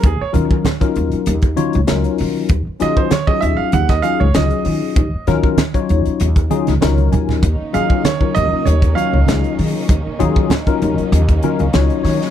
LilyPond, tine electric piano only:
\new Staff \with { instrumentName = "Tine electric piano" } { \time 4/4 \key ees \minor \tempo 4 = 97 << { r1 | r1 | r2. des''8 aes''8 | r1 |
r2 r8 aes''16 f''16 ees''8 des''8 | } \\ { r8 <ges des' ees' f' bes'>8 r16 <ges des' ees' f' bes'>8. r8 <ges des' ees' f' des''>16 r16 <ges des' ees' f' bes'>4 | r8 <ges des' ees' f' aes'>8 r16 <ges des' ees' f' aes'>8. r8 <ges des' ees' f' aes'>16 r16 <ges des' ees' f' aes'>4 | r8 <ges des' ees' f' bes'>8 r16 <ges des' ees' f' des''>8. r8 <ges des' ees' f' aes'>16 r16 <ges des' ees' f' bes'>4 | r8 <ges des' ees' f' aes'>8 r16 <ges des' ees' f' bes'>8. r8 <ges des' ees' f' des''>16 r16 <ges des' ees' f' aes'>4 |
r8 <ges des' ees' f' aes'>8 r16 <ges des' ees' f' bes'>8. r8 <ges des' ees' f' bes'>16 r16 <ges des' ees' f' des''>4 | } >> }